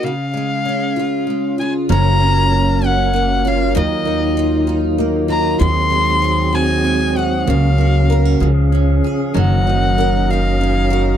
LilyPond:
<<
  \new Staff \with { instrumentName = "Violin" } { \time 6/8 \key fis \major \tempo 4. = 64 eis''2~ eis''8 gis''8 | ais''4. fis''4 eis''8 | dis''4. r4 ais''8 | bis''4. gis''4 fis''8 |
eis''4. r4. | fis''4. eis''4. | }
  \new Staff \with { instrumentName = "Steel-string acoustic guitar" } { \time 6/8 \key fis \major cis8 gis8 cis'8 eis'8 gis8 eis'8 | fis8 cis'4 cis'8 ais8 eis'8 | dis8 dis'8 eis'8 dis'8 ais8 eis'8 | dis8 bis8 gis'8 bis8 gis8 gis'8 |
cis8 fis'8 ais'8 cis8 cis'8 gis'8 | fis8 dis'8 ais'8 dis'8 cis'8 ais'8 | }
  \new Staff \with { instrumentName = "Steel-string acoustic guitar" } { \time 6/8 \key fis \major r2. | <eis cis'>8 eis8 ais8 cis'8 ais8 cis'8 | <fis eis'>8 ais8 dis'8 eis'8 dis'8 eis'8 | <dis fis'>8 gis8 bis8 fis'8 bis8 fis'8 |
<ais fis'>8 ais8 b16 cis'16 eis8 cis'8 eis'8 | <dis fis'>8 ais8 cis'8 fis'8 cis'8 fis'8 | }
  \new Staff \with { instrumentName = "Tonewheel organ" } { \time 6/8 \key fis \major << { r2. | ais'2. | fis2. | gis'2. |
ais'4. <gis' eis''>4. | <ais' dis''>2. | } \\ { r2. | <ais cis'>2. | <dis dis'>2. | bis2. |
<cis cis'>2. | <fis cis'>2. | } >> }
  \new Staff \with { instrumentName = "Upright bass" } { \clef bass \time 6/8 \key fis \major r2. | fis,,2. | dis,2. | dis,2. |
cis,4. cis,4 r8 | fis,,2. | }
>>